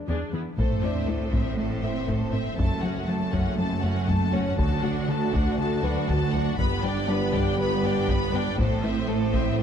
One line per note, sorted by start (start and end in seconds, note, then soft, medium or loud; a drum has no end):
0.00 0.55 D4 soft
0.00 0.60 D5 soft
0.08 0.16 E2 soft
0.08 0.24 E2 medium
0.08 0.23 E3 medium
0.08 0.32 D4 soft
0.08 0.32 G#4 soft
0.33 0.41 E2 soft
0.33 0.49 E3 soft
0.33 0.48 B3 medium
0.33 0.41 B3 soft
0.33 0.41 E4 soft
0.57 2.54 A1 medium
0.57 2.54 A2 soft
0.57 0.73 A2 medium
0.57 4.54 A3 medium
0.57 0.82 A3 soft
0.57 0.73 A3 medium
0.57 2.55 C4 medium
0.57 0.81 A4 soft
0.57 0.81 C5 soft
0.57 taiko medium
0.57 sub drop medium
0.83 0.98 A3 medium
0.83 1.08 C4 soft
0.83 2.30 D4 soft
0.83 0.98 E4 medium
0.83 1.08 C5 soft
0.83 2.30 D5 medium
0.83 1.08 E5 soft
1.06 1.23 A3 medium
1.06 1.34 A3 soft
1.06 1.23 E4 medium
1.06 1.32 A4 soft
1.06 1.33 C5 soft
1.32 1.48 A2 medium
1.32 1.48 A3 medium
1.32 1.58 C4 soft
1.32 1.58 C5 soft
1.32 1.58 E5 soft
1.32 taiko medium
1.57 1.81 A3 soft
1.57 1.73 A3 medium
1.57 1.82 A4 soft
1.57 1.81 C5 soft
1.83 1.98 A2 medium
1.83 2.08 C4 soft
1.83 1.99 C4 soft
1.83 2.08 C5 soft
1.83 2.08 E5 soft
2.08 2.23 A2 medium
2.08 2.23 A3 medium
2.08 2.33 A3 soft
2.08 2.33 A4 soft
2.08 2.33 C5 soft
2.08 taiko medium
2.33 2.48 A2 soft
2.33 2.48 C4 medium
2.33 2.59 C4 soft
2.33 2.58 C5 soft
2.33 2.58 E5 soft
2.57 4.54 F#1 medium
2.57 4.54 F#2 medium
2.57 2.73 F#2 medium
2.57 2.74 F#3 medium
2.57 2.82 A3 soft
2.57 4.54 C#4 medium
2.57 2.81 A4 soft
2.57 2.81 A5 soft
2.57 taiko medium
2.82 2.98 F#3 soft
2.82 3.09 C#4 soft
2.82 2.99 C#4 medium
2.82 3.08 F#4 soft
2.82 3.08 F#5 soft
3.07 3.23 F#3 medium
3.07 3.33 A3 soft
3.07 3.24 C#4 medium
3.07 3.33 A4 soft
3.07 3.33 A5 soft
3.31 3.48 F#2 medium
3.31 3.49 F#3 medium
3.31 3.58 C#4 soft
3.31 3.57 F#4 soft
3.31 3.58 F#5 soft
3.31 taiko medium
3.57 3.73 F#3 medium
3.57 3.81 A3 soft
3.57 3.81 A4 soft
3.57 3.82 A5 soft
3.81 3.98 F#2 medium
3.81 3.99 A3 soft
3.81 4.08 C#4 soft
3.81 4.07 F#4 soft
3.81 4.08 F#5 soft
4.07 4.23 F#2 medium
4.07 4.24 F#3 medium
4.07 4.33 A3 medium
4.07 4.33 A4 soft
4.07 4.34 A5 soft
4.07 taiko medium
4.33 4.49 F#2 medium
4.33 4.49 A3 medium
4.33 4.58 C#4 soft
4.33 4.58 F#4 soft
4.33 5.79 C#5 medium
4.33 4.59 F#5 soft
4.57 6.54 D2 medium
4.57 4.74 D2 medium
4.57 4.73 D3 medium
4.57 6.54 A3 medium
4.57 4.81 F#4 soft
4.57 6.54 F#4 medium
4.57 4.82 A4 medium
4.57 4.82 A5 soft
4.57 taiko medium
4.83 4.98 D3 medium
4.83 4.98 A3 medium
4.83 5.08 D4 medium
4.83 5.08 F#4 soft
4.83 5.08 F#5 soft
5.08 5.23 D3 medium
5.08 5.23 A3 medium
5.08 5.33 F#4 medium
5.08 5.33 A4 medium
5.08 5.34 A5 soft
5.32 5.48 D2 medium
5.32 5.48 D3 medium
5.32 5.58 D4 soft
5.32 5.58 F#4 medium
5.32 5.58 F#5 medium
5.32 taiko medium
5.58 5.73 D3 medium
5.58 5.82 F#4 medium
5.58 5.82 A4 medium
5.58 5.82 A5 medium
5.83 5.98 D2 medium
5.83 5.99 F#3 medium
5.83 6.08 D4 soft
5.83 6.08 F#4 medium
5.83 7.29 B4 medium
5.83 6.09 F#5 soft
6.08 6.23 D2 medium
6.08 6.23 D3 medium
6.08 6.34 F#4 medium
6.08 6.34 A4 medium
6.08 6.33 A5 medium
6.08 taiko medium
6.33 6.48 D2 medium
6.33 6.49 F#3 medium
6.33 6.59 D4 medium
6.33 6.59 F#4 soft
6.33 6.58 F#5 medium
6.57 8.54 G1 medium
6.57 6.73 G2 medium
6.57 8.54 G2 medium
6.57 6.74 G3 medium
6.57 8.40 B3 medium
6.57 6.82 B3 medium
6.57 8.40 G4 medium
6.57 6.82 B4 medium
6.57 6.81 B5 medium
6.57 taiko medium
6.83 6.98 G3 medium
6.83 7.09 D4 medium
6.83 6.99 D4 medium
6.83 7.09 D5 medium
6.83 7.08 G5 soft
7.07 7.23 G3 medium
7.07 7.34 B3 medium
7.07 8.54 D4 soft
7.07 7.24 D4 medium
7.07 7.34 B4 medium
7.07 8.54 D5 medium
7.07 7.33 B5 medium
7.33 7.48 G2 medium
7.33 7.48 G3 medium
7.33 7.59 D4 medium
7.33 7.59 D5 medium
7.33 7.59 G5 medium
7.33 taiko medium
7.58 7.73 G3 medium
7.58 7.82 B3 medium
7.58 7.82 B4 medium
7.58 7.83 B5 medium
7.83 7.98 G2 medium
7.83 7.98 B3 medium
7.83 8.09 D4 medium
7.83 8.09 D5 medium
7.83 8.09 G5 medium
8.08 8.24 G2 medium
8.08 8.23 G3 medium
8.08 8.34 B3 medium
8.08 8.34 B4 medium
8.08 8.34 B5 medium
8.08 taiko medium
8.33 8.48 G2 medium
8.33 8.49 B3 medium
8.33 8.59 D4 medium
8.33 8.58 D5 medium
8.33 8.59 G5 medium
8.57 9.63 A1 medium
8.57 9.63 A2 medium
8.57 8.73 A2 medium
8.57 8.73 A3 medium
8.57 8.82 A3 medium
8.57 9.63 C4 medium
8.57 9.63 E4 medium
8.57 8.82 A4 medium
8.57 8.82 C5 medium
8.57 taiko medium
8.83 8.99 A3 medium
8.83 9.10 C4 medium
8.83 8.98 E4 medium
8.83 9.09 C5 medium
8.83 9.09 E5 medium
9.08 9.23 A3 medium
9.08 9.34 A3 medium
9.08 9.23 E4 medium
9.08 9.33 A4 medium
9.08 9.34 C5 medium
9.34 9.49 A2 medium
9.34 9.49 A3 medium
9.34 9.59 C4 medium
9.34 9.59 C5 medium
9.34 9.59 E5 medium
9.34 taiko medium
9.59 9.63 A3 medium
9.59 9.63 C5 medium